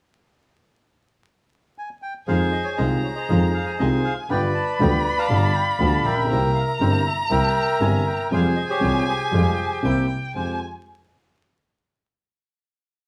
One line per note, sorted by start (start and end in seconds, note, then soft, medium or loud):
1.78 1.89 G#5 medium
2.02 2.14 G5 medium
2.27 2.49 F2 medium
2.27 2.49 D#3 medium
2.27 2.49 F3 medium
2.27 2.49 G#3 medium
2.27 2.49 G#3 soft
2.27 2.49 C4 soft
2.27 2.49 D#4 medium
2.27 2.49 F4 medium
2.27 3.15 G#4 medium
2.27 3.15 C5 medium
2.27 2.39 F5 medium
2.27 2.80 G#5 medium
2.52 2.64 D#5 medium
2.64 2.70 C#5 medium
2.77 2.99 C2 medium
2.77 3.00 C2 medium
2.77 3.00 C3 medium
2.77 2.99 D#3 medium
2.77 2.99 G#3 medium
2.77 3.00 G#3 medium
2.77 3.00 C4 medium
2.77 2.99 D#4 medium
2.77 2.99 F4 medium
2.77 3.00 F4 medium
2.77 2.89 D#5 medium
2.77 3.82 A#5 medium
3.03 3.09 C#5 medium
3.15 4.13 G#4 medium
3.15 4.14 C5 medium
3.15 3.51 D#5 medium
3.29 3.50 F2 medium
3.29 3.51 F2 medium
3.29 3.51 D#3 medium
3.29 3.51 F3 medium
3.29 3.50 G#3 medium
3.29 3.51 G#3 medium
3.29 3.51 C4 medium
3.29 3.50 D#4 medium
3.29 3.50 F4 medium
3.29 3.51 F4 medium
3.54 3.66 F5 medium
3.66 3.72 G#5 medium
3.78 4.01 C2 medium
3.78 4.01 C3 medium
3.78 4.01 D#3 medium
3.78 4.00 G#3 medium
3.78 4.01 G#3 medium
3.78 4.01 C4 medium
3.78 4.01 D#4 medium
3.78 4.01 F4 medium
3.78 3.90 D#5 medium
3.78 4.31 G#5 medium
4.04 4.16 F5 medium
4.29 4.51 G1 medium
4.29 4.51 G2 medium
4.29 4.51 D3 medium
4.29 4.51 G3 medium
4.29 4.51 B3 medium
4.29 4.51 F4 medium
4.29 5.27 B4 medium
4.29 5.17 D5 medium
4.29 4.42 G5 medium
4.29 6.31 B5 loud
4.55 4.81 A5 medium
4.79 5.01 D2 medium
4.79 5.01 D3 medium
4.79 5.01 G3 medium
4.79 5.01 B3 medium
4.79 5.01 F4 medium
4.79 5.03 G5 medium
5.04 5.10 B5 medium
5.18 6.14 D5 medium
5.18 6.14 F5 medium
5.18 5.56 A5 medium
5.29 5.51 G1 medium
5.29 5.51 G2 medium
5.29 5.51 D3 medium
5.29 5.51 G3 medium
5.29 5.51 B3 medium
5.29 5.51 F4 medium
5.55 5.66 G5 medium
5.79 6.01 D2 medium
5.79 6.01 D3 medium
5.79 6.01 G3 medium
5.79 6.01 B3 medium
5.79 6.01 F4 medium
5.79 6.06 A5 medium
6.05 6.30 A#1 soft
6.05 7.01 A#4 medium
6.05 6.66 E5 medium
6.05 6.52 G5 medium
6.11 6.18 A1 soft
6.18 6.24 A#1 medium
6.25 6.31 B1 medium
6.30 6.51 C2 medium
6.30 6.52 C2 medium
6.30 6.52 C3 medium
6.30 6.52 G3 medium
6.30 6.51 A#3 medium
6.30 6.52 A#3 medium
6.30 6.51 C4 medium
6.30 6.51 E4 medium
6.30 6.52 E4 medium
6.30 8.31 A#5 loud
6.55 6.60 F5 medium
6.67 6.73 E5 medium
6.80 7.01 G1 medium
6.80 7.02 G1 medium
6.80 7.02 G2 medium
6.80 7.02 C3 medium
6.80 7.02 G3 medium
6.80 7.01 A#3 medium
6.80 7.02 A#3 medium
6.80 7.01 C4 medium
6.80 7.01 E4 medium
6.80 7.02 E4 medium
6.80 7.04 C5 medium
7.06 7.17 E5 medium
7.29 7.52 C2 medium
7.29 7.52 C3 medium
7.29 7.52 G3 medium
7.29 7.51 A#3 medium
7.29 7.52 A#3 medium
7.29 7.51 C4 medium
7.29 7.51 E4 medium
7.29 7.52 E4 medium
7.29 8.27 A#4 medium
7.29 8.28 E5 medium
7.29 7.78 G5 medium
7.80 8.02 G1 medium
7.80 8.02 G2 medium
7.80 8.02 C3 medium
7.80 8.02 G3 medium
7.80 8.02 A#3 medium
7.80 8.02 C4 medium
7.80 8.02 E4 medium
7.80 8.07 G#5 medium
8.07 8.30 G5 medium
8.31 8.52 F2 medium
8.31 8.52 C3 medium
8.31 8.52 F3 medium
8.31 8.52 G3 medium
8.31 8.52 G#3 medium
8.31 8.52 F4 medium
8.31 8.68 G#4 medium
8.31 9.07 C5 medium
8.31 8.44 F5 medium
8.31 9.86 G#5 loud
8.56 8.62 D#5 medium
8.70 9.07 G4 medium
8.70 9.07 G#4 medium
8.70 9.05 C#5 medium
8.81 9.03 C2 medium
8.81 9.03 C3 medium
8.81 9.03 G3 medium
8.81 9.03 G#3 medium
8.81 9.03 F4 medium
9.08 10.07 G4 soft
9.08 9.81 G#4 soft
9.08 10.07 C5 medium
9.31 9.54 F2 medium
9.31 9.54 C3 medium
9.31 9.54 F3 medium
9.31 9.54 G3 medium
9.31 9.54 G#3 medium
9.31 9.54 F4 medium
9.31 9.55 F4 medium
9.83 10.05 C2 medium
9.83 10.06 C2 medium
9.83 10.05 C3 medium
9.83 10.05 G3 medium
9.83 10.05 A#3 soft
9.83 10.06 A#3 medium
9.83 10.06 C4 medium
9.83 10.05 E4 medium
9.83 10.06 E4 medium
9.83 10.35 G5 medium
10.34 10.56 F2 soft
10.34 10.57 F2 soft
10.34 10.56 G#3 soft
10.34 10.57 G#3 soft
10.34 10.56 F4 soft
10.34 10.57 F4 soft
10.34 10.56 G4 medium
10.34 10.57 G4 soft
10.34 10.59 C5 medium
10.34 10.59 G#5 medium